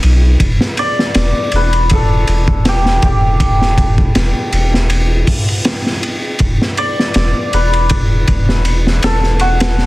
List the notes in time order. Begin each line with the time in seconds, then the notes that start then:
0.03 B1, ride
0.40 E1, kick, ride
0.61 snare
0.77 D5, ride
0.99 snare
1.14 E1, snare, ride
1.52 E1 B4, ride
1.73 ride
1.90 A4, kick, ride
2.27 E1, ride
2.48 kick
2.65 G4, snare, ride
2.86 snare
3.02 E1 G4, kick, ride
3.40 kick, ride
3.61 snare
3.78 kick, ride
3.98 kick
4.15 E1, snare, ride
4.53 E1, ride
4.74 snare
4.90 ride
5.27 kick, open hi-hat
5.48 ride
5.65 snare, ride
5.86 snare
6.03 ride
6.39 E1, kick, ride
6.62 snare
6.77 D5, ride
6.99 snare
7.14 E1, snare, ride
7.53 E1 B4, ride
7.73 ride
7.89 kick, ride
8.28 E1, kick, ride
8.49 snare
8.65 ride
8.87 snare
9.03 E1 A4, snare, ride
9.23 snare
9.39 F#4, ride
9.60 snare, ride
9.78 snare